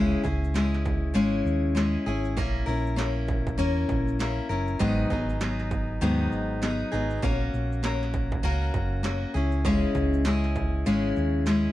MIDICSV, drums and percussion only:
0, 0, Header, 1, 2, 480
1, 0, Start_track
1, 0, Tempo, 606673
1, 1880, Time_signature, 4, 2, 24, 8
1, 9274, End_track
2, 0, Start_track
2, 0, Title_t, "Drums"
2, 195, Note_on_c, 9, 36, 85
2, 202, Note_on_c, 9, 82, 52
2, 275, Note_off_c, 9, 36, 0
2, 281, Note_off_c, 9, 82, 0
2, 349, Note_on_c, 9, 82, 50
2, 428, Note_off_c, 9, 82, 0
2, 439, Note_on_c, 9, 82, 77
2, 440, Note_on_c, 9, 38, 109
2, 518, Note_off_c, 9, 82, 0
2, 519, Note_off_c, 9, 38, 0
2, 589, Note_on_c, 9, 38, 32
2, 668, Note_off_c, 9, 38, 0
2, 675, Note_on_c, 9, 82, 55
2, 677, Note_on_c, 9, 36, 92
2, 754, Note_off_c, 9, 82, 0
2, 757, Note_off_c, 9, 36, 0
2, 917, Note_on_c, 9, 82, 65
2, 996, Note_off_c, 9, 82, 0
2, 1161, Note_on_c, 9, 82, 48
2, 1240, Note_off_c, 9, 82, 0
2, 1398, Note_on_c, 9, 82, 70
2, 1400, Note_on_c, 9, 38, 103
2, 1477, Note_off_c, 9, 82, 0
2, 1479, Note_off_c, 9, 38, 0
2, 1642, Note_on_c, 9, 82, 57
2, 1722, Note_off_c, 9, 82, 0
2, 1777, Note_on_c, 9, 82, 51
2, 1856, Note_off_c, 9, 82, 0
2, 1879, Note_on_c, 9, 36, 115
2, 1881, Note_on_c, 9, 82, 66
2, 1958, Note_off_c, 9, 36, 0
2, 1960, Note_off_c, 9, 82, 0
2, 2124, Note_on_c, 9, 82, 46
2, 2204, Note_off_c, 9, 82, 0
2, 2268, Note_on_c, 9, 82, 47
2, 2347, Note_off_c, 9, 82, 0
2, 2361, Note_on_c, 9, 82, 77
2, 2362, Note_on_c, 9, 38, 105
2, 2440, Note_off_c, 9, 82, 0
2, 2441, Note_off_c, 9, 38, 0
2, 2595, Note_on_c, 9, 82, 56
2, 2599, Note_on_c, 9, 36, 91
2, 2675, Note_off_c, 9, 82, 0
2, 2678, Note_off_c, 9, 36, 0
2, 2743, Note_on_c, 9, 36, 87
2, 2751, Note_on_c, 9, 82, 42
2, 2823, Note_off_c, 9, 36, 0
2, 2831, Note_off_c, 9, 82, 0
2, 2841, Note_on_c, 9, 82, 62
2, 2920, Note_off_c, 9, 82, 0
2, 3078, Note_on_c, 9, 36, 88
2, 3082, Note_on_c, 9, 82, 46
2, 3157, Note_off_c, 9, 36, 0
2, 3161, Note_off_c, 9, 82, 0
2, 3228, Note_on_c, 9, 82, 48
2, 3307, Note_off_c, 9, 82, 0
2, 3324, Note_on_c, 9, 82, 70
2, 3326, Note_on_c, 9, 38, 109
2, 3403, Note_off_c, 9, 82, 0
2, 3405, Note_off_c, 9, 38, 0
2, 3563, Note_on_c, 9, 82, 51
2, 3642, Note_off_c, 9, 82, 0
2, 3697, Note_on_c, 9, 82, 50
2, 3776, Note_off_c, 9, 82, 0
2, 3800, Note_on_c, 9, 36, 106
2, 3800, Note_on_c, 9, 82, 67
2, 3879, Note_off_c, 9, 36, 0
2, 3879, Note_off_c, 9, 82, 0
2, 4038, Note_on_c, 9, 36, 80
2, 4041, Note_on_c, 9, 82, 52
2, 4117, Note_off_c, 9, 36, 0
2, 4120, Note_off_c, 9, 82, 0
2, 4188, Note_on_c, 9, 82, 47
2, 4267, Note_off_c, 9, 82, 0
2, 4278, Note_on_c, 9, 82, 75
2, 4279, Note_on_c, 9, 38, 111
2, 4357, Note_off_c, 9, 82, 0
2, 4358, Note_off_c, 9, 38, 0
2, 4427, Note_on_c, 9, 38, 32
2, 4506, Note_off_c, 9, 38, 0
2, 4517, Note_on_c, 9, 82, 55
2, 4519, Note_on_c, 9, 36, 93
2, 4596, Note_off_c, 9, 82, 0
2, 4599, Note_off_c, 9, 36, 0
2, 4758, Note_on_c, 9, 82, 64
2, 4837, Note_off_c, 9, 82, 0
2, 5001, Note_on_c, 9, 82, 45
2, 5080, Note_off_c, 9, 82, 0
2, 5240, Note_on_c, 9, 82, 74
2, 5242, Note_on_c, 9, 38, 109
2, 5319, Note_off_c, 9, 82, 0
2, 5322, Note_off_c, 9, 38, 0
2, 5485, Note_on_c, 9, 82, 54
2, 5564, Note_off_c, 9, 82, 0
2, 5619, Note_on_c, 9, 82, 53
2, 5698, Note_off_c, 9, 82, 0
2, 5719, Note_on_c, 9, 36, 112
2, 5719, Note_on_c, 9, 82, 64
2, 5798, Note_off_c, 9, 36, 0
2, 5798, Note_off_c, 9, 82, 0
2, 5966, Note_on_c, 9, 82, 51
2, 6045, Note_off_c, 9, 82, 0
2, 6111, Note_on_c, 9, 82, 49
2, 6190, Note_off_c, 9, 82, 0
2, 6200, Note_on_c, 9, 82, 77
2, 6201, Note_on_c, 9, 38, 109
2, 6279, Note_off_c, 9, 82, 0
2, 6280, Note_off_c, 9, 38, 0
2, 6351, Note_on_c, 9, 38, 32
2, 6430, Note_off_c, 9, 38, 0
2, 6436, Note_on_c, 9, 82, 56
2, 6439, Note_on_c, 9, 36, 91
2, 6515, Note_off_c, 9, 82, 0
2, 6518, Note_off_c, 9, 36, 0
2, 6582, Note_on_c, 9, 36, 92
2, 6662, Note_off_c, 9, 36, 0
2, 6678, Note_on_c, 9, 82, 64
2, 6757, Note_off_c, 9, 82, 0
2, 6915, Note_on_c, 9, 36, 90
2, 6919, Note_on_c, 9, 82, 46
2, 6995, Note_off_c, 9, 36, 0
2, 6998, Note_off_c, 9, 82, 0
2, 7152, Note_on_c, 9, 82, 75
2, 7154, Note_on_c, 9, 38, 104
2, 7231, Note_off_c, 9, 82, 0
2, 7233, Note_off_c, 9, 38, 0
2, 7394, Note_on_c, 9, 82, 58
2, 7473, Note_off_c, 9, 82, 0
2, 7530, Note_on_c, 9, 82, 50
2, 7609, Note_off_c, 9, 82, 0
2, 7634, Note_on_c, 9, 36, 112
2, 7634, Note_on_c, 9, 82, 63
2, 7713, Note_off_c, 9, 36, 0
2, 7713, Note_off_c, 9, 82, 0
2, 7872, Note_on_c, 9, 36, 79
2, 7874, Note_on_c, 9, 82, 49
2, 7951, Note_off_c, 9, 36, 0
2, 7953, Note_off_c, 9, 82, 0
2, 8018, Note_on_c, 9, 82, 51
2, 8098, Note_off_c, 9, 82, 0
2, 8108, Note_on_c, 9, 82, 78
2, 8109, Note_on_c, 9, 38, 108
2, 8187, Note_off_c, 9, 82, 0
2, 8188, Note_off_c, 9, 38, 0
2, 8260, Note_on_c, 9, 38, 32
2, 8339, Note_off_c, 9, 38, 0
2, 8350, Note_on_c, 9, 82, 57
2, 8353, Note_on_c, 9, 36, 86
2, 8429, Note_off_c, 9, 82, 0
2, 8432, Note_off_c, 9, 36, 0
2, 8591, Note_on_c, 9, 82, 66
2, 8670, Note_off_c, 9, 82, 0
2, 8834, Note_on_c, 9, 82, 46
2, 8913, Note_off_c, 9, 82, 0
2, 9070, Note_on_c, 9, 82, 70
2, 9072, Note_on_c, 9, 38, 105
2, 9150, Note_off_c, 9, 82, 0
2, 9152, Note_off_c, 9, 38, 0
2, 9274, End_track
0, 0, End_of_file